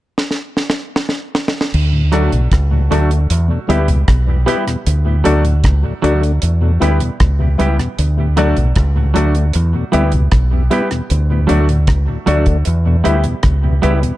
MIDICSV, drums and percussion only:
0, 0, Header, 1, 2, 480
1, 0, Start_track
1, 0, Key_signature, 2, "major"
1, 0, Tempo, 781250
1, 1066, Time_signature, 4, 2, 24, 8
1, 8708, End_track
2, 0, Start_track
2, 0, Title_t, "Drums"
2, 110, Note_on_c, 9, 38, 54
2, 171, Note_off_c, 9, 38, 0
2, 189, Note_on_c, 9, 38, 52
2, 250, Note_off_c, 9, 38, 0
2, 349, Note_on_c, 9, 38, 62
2, 410, Note_off_c, 9, 38, 0
2, 428, Note_on_c, 9, 38, 78
2, 490, Note_off_c, 9, 38, 0
2, 590, Note_on_c, 9, 38, 76
2, 651, Note_off_c, 9, 38, 0
2, 669, Note_on_c, 9, 38, 70
2, 730, Note_off_c, 9, 38, 0
2, 829, Note_on_c, 9, 38, 81
2, 890, Note_off_c, 9, 38, 0
2, 910, Note_on_c, 9, 38, 92
2, 972, Note_off_c, 9, 38, 0
2, 988, Note_on_c, 9, 38, 80
2, 1050, Note_off_c, 9, 38, 0
2, 1068, Note_on_c, 9, 49, 76
2, 1129, Note_off_c, 9, 49, 0
2, 1305, Note_on_c, 9, 42, 63
2, 1306, Note_on_c, 9, 37, 59
2, 1367, Note_off_c, 9, 42, 0
2, 1368, Note_off_c, 9, 37, 0
2, 1428, Note_on_c, 9, 42, 48
2, 1490, Note_off_c, 9, 42, 0
2, 1545, Note_on_c, 9, 42, 74
2, 1546, Note_on_c, 9, 36, 106
2, 1553, Note_on_c, 9, 37, 99
2, 1607, Note_off_c, 9, 42, 0
2, 1608, Note_off_c, 9, 36, 0
2, 1615, Note_off_c, 9, 37, 0
2, 1793, Note_on_c, 9, 42, 80
2, 1854, Note_off_c, 9, 42, 0
2, 1910, Note_on_c, 9, 42, 50
2, 1972, Note_off_c, 9, 42, 0
2, 2028, Note_on_c, 9, 42, 94
2, 2090, Note_off_c, 9, 42, 0
2, 2272, Note_on_c, 9, 42, 71
2, 2333, Note_off_c, 9, 42, 0
2, 2385, Note_on_c, 9, 42, 51
2, 2446, Note_off_c, 9, 42, 0
2, 2506, Note_on_c, 9, 42, 65
2, 2507, Note_on_c, 9, 37, 102
2, 2508, Note_on_c, 9, 36, 101
2, 2567, Note_off_c, 9, 42, 0
2, 2569, Note_off_c, 9, 37, 0
2, 2570, Note_off_c, 9, 36, 0
2, 2752, Note_on_c, 9, 42, 70
2, 2813, Note_off_c, 9, 42, 0
2, 2872, Note_on_c, 9, 42, 50
2, 2873, Note_on_c, 9, 37, 61
2, 2934, Note_off_c, 9, 42, 0
2, 2935, Note_off_c, 9, 37, 0
2, 2989, Note_on_c, 9, 42, 79
2, 3051, Note_off_c, 9, 42, 0
2, 3227, Note_on_c, 9, 42, 68
2, 3288, Note_off_c, 9, 42, 0
2, 3346, Note_on_c, 9, 42, 44
2, 3408, Note_off_c, 9, 42, 0
2, 3463, Note_on_c, 9, 42, 72
2, 3467, Note_on_c, 9, 36, 107
2, 3471, Note_on_c, 9, 37, 94
2, 3525, Note_off_c, 9, 42, 0
2, 3528, Note_off_c, 9, 36, 0
2, 3533, Note_off_c, 9, 37, 0
2, 3712, Note_on_c, 9, 42, 80
2, 3773, Note_off_c, 9, 42, 0
2, 3830, Note_on_c, 9, 42, 48
2, 3892, Note_off_c, 9, 42, 0
2, 3943, Note_on_c, 9, 42, 88
2, 4005, Note_off_c, 9, 42, 0
2, 4189, Note_on_c, 9, 42, 74
2, 4251, Note_off_c, 9, 42, 0
2, 4303, Note_on_c, 9, 42, 52
2, 4365, Note_off_c, 9, 42, 0
2, 4424, Note_on_c, 9, 42, 67
2, 4425, Note_on_c, 9, 37, 105
2, 4427, Note_on_c, 9, 36, 97
2, 4485, Note_off_c, 9, 42, 0
2, 4487, Note_off_c, 9, 37, 0
2, 4489, Note_off_c, 9, 36, 0
2, 4667, Note_on_c, 9, 42, 75
2, 4728, Note_off_c, 9, 42, 0
2, 4789, Note_on_c, 9, 37, 64
2, 4789, Note_on_c, 9, 42, 50
2, 4850, Note_off_c, 9, 42, 0
2, 4851, Note_off_c, 9, 37, 0
2, 4906, Note_on_c, 9, 42, 80
2, 4968, Note_off_c, 9, 42, 0
2, 5142, Note_on_c, 9, 42, 73
2, 5204, Note_off_c, 9, 42, 0
2, 5263, Note_on_c, 9, 42, 47
2, 5324, Note_off_c, 9, 42, 0
2, 5379, Note_on_c, 9, 42, 72
2, 5384, Note_on_c, 9, 36, 115
2, 5387, Note_on_c, 9, 37, 88
2, 5441, Note_off_c, 9, 42, 0
2, 5445, Note_off_c, 9, 36, 0
2, 5449, Note_off_c, 9, 37, 0
2, 5626, Note_on_c, 9, 42, 80
2, 5687, Note_off_c, 9, 42, 0
2, 5743, Note_on_c, 9, 42, 49
2, 5804, Note_off_c, 9, 42, 0
2, 5858, Note_on_c, 9, 42, 90
2, 5919, Note_off_c, 9, 42, 0
2, 6102, Note_on_c, 9, 42, 72
2, 6164, Note_off_c, 9, 42, 0
2, 6216, Note_on_c, 9, 42, 50
2, 6277, Note_off_c, 9, 42, 0
2, 6338, Note_on_c, 9, 42, 68
2, 6339, Note_on_c, 9, 37, 106
2, 6342, Note_on_c, 9, 36, 101
2, 6399, Note_off_c, 9, 42, 0
2, 6401, Note_off_c, 9, 37, 0
2, 6403, Note_off_c, 9, 36, 0
2, 6581, Note_on_c, 9, 42, 73
2, 6642, Note_off_c, 9, 42, 0
2, 6702, Note_on_c, 9, 42, 50
2, 6703, Note_on_c, 9, 37, 59
2, 6764, Note_off_c, 9, 42, 0
2, 6765, Note_off_c, 9, 37, 0
2, 6820, Note_on_c, 9, 42, 72
2, 6881, Note_off_c, 9, 42, 0
2, 7059, Note_on_c, 9, 42, 61
2, 7121, Note_off_c, 9, 42, 0
2, 7181, Note_on_c, 9, 42, 49
2, 7243, Note_off_c, 9, 42, 0
2, 7295, Note_on_c, 9, 42, 77
2, 7298, Note_on_c, 9, 36, 116
2, 7303, Note_on_c, 9, 37, 96
2, 7356, Note_off_c, 9, 42, 0
2, 7360, Note_off_c, 9, 36, 0
2, 7364, Note_off_c, 9, 37, 0
2, 7539, Note_on_c, 9, 42, 81
2, 7601, Note_off_c, 9, 42, 0
2, 7655, Note_on_c, 9, 42, 51
2, 7659, Note_on_c, 9, 36, 64
2, 7716, Note_off_c, 9, 42, 0
2, 7720, Note_off_c, 9, 36, 0
2, 7773, Note_on_c, 9, 42, 89
2, 7834, Note_off_c, 9, 42, 0
2, 8018, Note_on_c, 9, 42, 71
2, 8080, Note_off_c, 9, 42, 0
2, 8132, Note_on_c, 9, 42, 51
2, 8194, Note_off_c, 9, 42, 0
2, 8251, Note_on_c, 9, 42, 68
2, 8252, Note_on_c, 9, 37, 107
2, 8258, Note_on_c, 9, 36, 109
2, 8312, Note_off_c, 9, 42, 0
2, 8314, Note_off_c, 9, 37, 0
2, 8319, Note_off_c, 9, 36, 0
2, 8498, Note_on_c, 9, 42, 74
2, 8559, Note_off_c, 9, 42, 0
2, 8621, Note_on_c, 9, 42, 53
2, 8682, Note_off_c, 9, 42, 0
2, 8708, End_track
0, 0, End_of_file